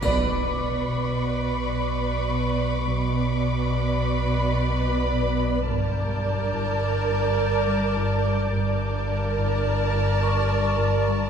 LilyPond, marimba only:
\new Staff \with { instrumentName = "Marimba" } { \clef bass \time 5/4 \key b \minor \tempo 4 = 106 b,8 b,8 b,8 b,8 b,8 b,8 b,8 b8 b,8 b8 | b,8 b,8 b,8 b,8 b,8 b,8 b,8 b8 b,8 b8 | g,8 g,8 g,8 g,8 g,8 g,8 r8 g8 g,8 g8 | g,8 g,8 g,8 g,8 g,8 g,8 g,8 g8 g,8 g8 | }